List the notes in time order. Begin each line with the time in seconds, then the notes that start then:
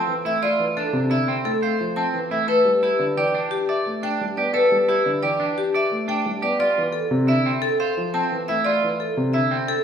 Already playing: C4 A5
0.07 E3
0.25 A3 E4 E5
0.42 F4 D5
0.59 E3
0.77 D4 A4
0.93 C3
1.11 D3 E4 E5
1.28 C4
1.45 A3 A4
1.62 C5 F5
1.80 F3
1.96 C4 A5
2.14 E3
2.30 A3 E4 E5
2.48 A4 B4
2.65 G3
2.83 E4 G4
2.99 D3
3.17 E3 G4 D5
3.35 D4
3.51 G4
3.69 D5 E5
3.86 A3
4.03 D4 G5
4.21 G3
4.37 B3 G4 D5
4.54 A4 B4
4.72 G3
4.88 E4 G4
5.06 D3
5.23 E3 G4 D5
5.40 D4
5.58 G4
5.74 D5 E5
5.92 A3
6.08 D4 G5
6.26 G3
6.42 B3 G4 D5
6.60 F4 D5
6.78 E3
6.93 A4
7.11 C3
7.28 D3 E4 E5
7.46 C4
7.62 A4
7.80 C5 F5
7.97 F3
8.14 C4 A5
8.32 E3
8.48 A3 E4 E5
8.65 F4 D5
8.83 E3
9.00 A4
9.17 C3
9.34 D3 E4 E5
9.51 C4
9.69 A4